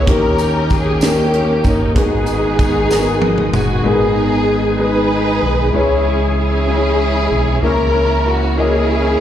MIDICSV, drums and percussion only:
0, 0, Header, 1, 2, 480
1, 0, Start_track
1, 0, Key_signature, 5, "minor"
1, 0, Tempo, 628931
1, 59, Time_signature, 6, 3, 24, 8
1, 7024, End_track
2, 0, Start_track
2, 0, Title_t, "Drums"
2, 56, Note_on_c, 9, 42, 85
2, 57, Note_on_c, 9, 36, 94
2, 132, Note_off_c, 9, 42, 0
2, 133, Note_off_c, 9, 36, 0
2, 292, Note_on_c, 9, 54, 57
2, 298, Note_on_c, 9, 42, 43
2, 369, Note_off_c, 9, 54, 0
2, 375, Note_off_c, 9, 42, 0
2, 534, Note_on_c, 9, 54, 42
2, 540, Note_on_c, 9, 36, 80
2, 542, Note_on_c, 9, 42, 46
2, 611, Note_off_c, 9, 54, 0
2, 616, Note_off_c, 9, 36, 0
2, 618, Note_off_c, 9, 42, 0
2, 771, Note_on_c, 9, 54, 82
2, 779, Note_on_c, 9, 42, 79
2, 785, Note_on_c, 9, 38, 96
2, 848, Note_off_c, 9, 54, 0
2, 855, Note_off_c, 9, 42, 0
2, 861, Note_off_c, 9, 38, 0
2, 1019, Note_on_c, 9, 42, 52
2, 1095, Note_off_c, 9, 42, 0
2, 1252, Note_on_c, 9, 54, 49
2, 1257, Note_on_c, 9, 36, 75
2, 1258, Note_on_c, 9, 42, 45
2, 1328, Note_off_c, 9, 54, 0
2, 1333, Note_off_c, 9, 36, 0
2, 1334, Note_off_c, 9, 42, 0
2, 1495, Note_on_c, 9, 36, 102
2, 1495, Note_on_c, 9, 42, 87
2, 1571, Note_off_c, 9, 36, 0
2, 1571, Note_off_c, 9, 42, 0
2, 1728, Note_on_c, 9, 54, 53
2, 1731, Note_on_c, 9, 42, 42
2, 1804, Note_off_c, 9, 54, 0
2, 1807, Note_off_c, 9, 42, 0
2, 1975, Note_on_c, 9, 42, 50
2, 1977, Note_on_c, 9, 36, 80
2, 1979, Note_on_c, 9, 54, 46
2, 2052, Note_off_c, 9, 42, 0
2, 2054, Note_off_c, 9, 36, 0
2, 2056, Note_off_c, 9, 54, 0
2, 2217, Note_on_c, 9, 54, 78
2, 2222, Note_on_c, 9, 38, 49
2, 2293, Note_off_c, 9, 54, 0
2, 2298, Note_off_c, 9, 38, 0
2, 2454, Note_on_c, 9, 48, 69
2, 2531, Note_off_c, 9, 48, 0
2, 2578, Note_on_c, 9, 47, 57
2, 2654, Note_off_c, 9, 47, 0
2, 2698, Note_on_c, 9, 45, 80
2, 2706, Note_on_c, 9, 54, 41
2, 2774, Note_off_c, 9, 45, 0
2, 2783, Note_off_c, 9, 54, 0
2, 7024, End_track
0, 0, End_of_file